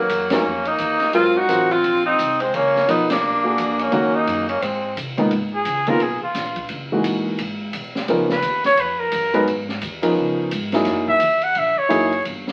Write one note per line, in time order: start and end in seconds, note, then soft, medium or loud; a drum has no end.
0.00 0.35 F#3 medium
0.00 0.34 A#3 medium
0.09 0.43 F#2 medium
0.09 kick soft
0.09 hi-hat pedal medium
0.09 ride medium
0.30 0.44 F#3 medium
0.30 0.67 A#3 medium
0.30 0.44 C#4 medium
0.30 0.69 C#4 medium
0.30 0.44 D#4 medium
0.30 0.44 A#4 medium
0.30 snare medium
0.30 ride medium
0.44 0.78 F2 medium
0.65 1.14 A#3 medium
0.65 1.14 D#4 medium
0.65 ride soft
0.78 1.13 D#2 medium
0.78 kick soft
0.78 hi-hat pedal medium
0.78 ride medium
1.00 snare soft
1.00 ride soft
1.13 1.48 G#1 medium
1.13 1.33 F#3 medium
1.13 1.34 C4 medium
1.13 1.38 C4 medium
1.13 1.34 F4 soft
1.13 1.39 F4 loud
1.13 1.34 A#4 medium
1.13 kick soft
1.13 ride medium
1.36 1.73 D#4 medium
1.36 1.73 F#4 loud
1.48 1.83 A1 medium
1.48 1.68 F#3 medium
1.48 1.68 C4 medium
1.48 1.69 F4 medium
1.48 1.69 A#4 medium
1.48 kick soft
1.48 hi-hat pedal medium
1.48 ride medium
1.71 2.05 C4 medium
1.71 2.05 F4 loud
1.71 ride soft
1.83 2.17 A#1 medium
1.83 kick soft
1.83 ride medium
2.06 2.43 C4 medium
2.06 2.42 D#4 medium
2.19 2.53 C2 medium
2.19 kick soft
2.19 hi-hat pedal medium
2.19 ride medium
2.40 2.56 G#3 medium
2.40 2.57 C4 medium
2.40 ride soft
2.53 2.87 C#2 medium
2.53 2.89 A#3 medium
2.53 2.91 C#4 loud
2.53 kick soft
2.53 ride medium
2.76 snare soft
2.88 3.21 B1 medium
2.88 3.07 F3 medium
2.88 3.09 B3 medium
2.88 3.08 B3 soft
2.88 3.08 D#4 soft
2.88 3.10 D#4 medium
2.88 3.08 A#4 medium
2.88 kick soft
2.88 hi-hat pedal medium
2.88 ride medium
3.09 3.79 A#3 medium
3.09 3.82 D4 medium
3.09 snare medium
3.09 ride medium
3.21 3.56 A#1 medium
3.44 3.90 A#3 medium
3.44 3.90 D4 medium
3.44 3.90 F#4 medium
3.44 3.90 G#4 medium
3.58 3.91 F2 medium
3.58 kick soft
3.58 hi-hat pedal medium
3.58 ride medium
3.79 4.14 A#3 medium
3.79 4.16 C#4 medium
3.79 ride soft
3.92 4.26 D#2 medium
3.92 4.45 D#3 medium
3.92 4.44 A#3 medium
3.92 4.45 C#4 medium
3.92 4.45 F#4 medium
3.92 kick soft
3.92 ride medium
4.14 4.49 A#3 medium
4.14 4.48 D#4 medium
4.27 4.61 F#2 medium
4.27 kick soft
4.27 hi-hat pedal medium
4.27 ride medium
4.49 4.63 A#3 medium
4.49 4.63 C#4 medium
4.49 ride soft
4.61 4.96 G#2 medium
4.61 4.97 G#3 medium
4.61 4.97 C4 medium
4.61 kick soft
4.61 ride medium
4.96 5.30 C3 medium
4.96 kick soft
4.96 hi-hat pedal medium
4.96 ride medium
5.18 5.30 C#2 medium
5.18 5.30 D#3 medium
5.18 5.30 A#3 medium
5.18 5.30 B3 medium
5.18 5.31 D#4 medium
5.18 ride soft
5.31 5.65 G#2 medium
5.31 kick soft
5.31 ride medium
5.55 5.90 G#4 medium
5.65 5.99 C#2 medium
5.65 kick soft
5.65 hi-hat pedal medium
5.65 ride medium
5.87 6.00 D#3 medium
5.87 6.00 A#3 medium
5.87 6.00 B3 medium
5.87 6.00 C#4 medium
5.87 6.00 F4 medium
5.87 6.04 A#4 medium
5.87 ride soft
6.00 6.20 B1 medium
6.00 6.23 G#4 medium
6.00 kick soft
6.00 ride medium
6.22 6.67 F4 medium
6.22 muted upright bass stroke soft
6.34 6.69 A#1 medium
6.34 kick soft
6.34 snare soft
6.34 hi-hat pedal medium
6.34 ride medium
6.56 kick medium
6.56 ride soft
6.69 7.04 F#1 medium
6.69 kick soft
6.69 ride medium
6.92 7.37 E3 medium
6.92 7.37 G#3 medium
6.92 7.38 A#3 medium
6.92 7.38 D#4 medium
6.92 7.38 F#4 medium
7.04 7.25 A#1 medium
7.04 kick soft
7.04 hi-hat pedal medium
7.04 ride medium
7.26 muted upright bass stroke soft
7.38 7.72 G#1 medium
7.38 kick soft
7.38 ride medium
7.73 8.07 B1 medium
7.73 kick soft
7.73 hi-hat pedal medium
7.73 ride medium
7.95 snare soft
8.08 8.42 C#2 medium
8.08 8.28 F3 medium
8.08 8.28 B3 medium
8.08 8.29 C#4 medium
8.08 8.29 D#4 medium
8.08 8.29 A#4 medium
8.08 kick soft
8.08 ride medium
8.29 8.63 B4 medium
8.29 snare medium
8.42 8.77 D#2 medium
8.42 kick soft
8.42 hi-hat pedal medium
8.42 ride medium
8.64 8.82 C#5 loud
8.64 snare soft
8.64 ride soft
8.77 9.12 F2 medium
8.77 9.01 B4 medium
8.77 kick soft
8.77 ride medium
8.99 9.48 A#4 loud
9.12 9.46 F#2 medium
9.12 kick soft
9.12 hi-hat pedal medium
9.12 ride medium
9.34 9.46 F#3 medium
9.34 9.46 G#3 medium
9.34 9.46 B3 medium
9.34 9.47 D#4 medium
9.34 9.46 B4 medium
9.34 ride soft
9.47 9.81 G#2 medium
9.47 kick soft
9.47 ride medium
9.69 snare soft
9.81 10.16 D#2 medium
9.81 kick soft
9.81 hi-hat pedal medium
9.81 ride medium
10.02 10.48 F3 medium
10.02 10.48 B3 medium
10.02 10.49 C#4 medium
10.02 10.49 D#4 medium
10.02 10.49 A#4 medium
10.02 ride medium
10.16 10.50 C#2 medium
10.16 kick soft
10.51 10.85 G#2 medium
10.51 kick soft
10.51 hi-hat pedal medium
10.51 ride medium
10.72 11.19 F#3 medium
10.72 11.19 A#3 medium
10.72 11.19 D#4 medium
10.72 11.19 E4 medium
10.72 11.19 G#4 medium
10.72 snare soft
10.72 ride soft
10.85 11.20 F#2 medium
10.85 kick soft
10.85 snare soft
10.85 ride medium
11.08 11.45 E5 loud
11.08 kick medium
11.20 11.54 D#2 medium
11.20 kick soft
11.20 hi-hat pedal medium
11.20 ride medium
11.41 11.60 F#5 loud
11.41 ride soft
11.55 11.75 A#1 medium
11.55 11.80 E5 medium
11.55 kick soft
11.55 ride medium
11.76 12.26 C#5 loud
11.76 muted upright bass stroke soft
11.89 12.24 F#1 medium
11.89 12.09 F#3 medium
11.89 12.09 A#3 medium
11.89 12.09 D#4 medium
11.89 12.09 E4 medium
11.89 12.10 G#4 medium
11.89 kick soft
11.89 hi-hat pedal soft
11.89 ride medium
12.12 ride soft
12.25 12.52 G1 medium
12.25 kick soft
12.25 ride medium
12.47 snare soft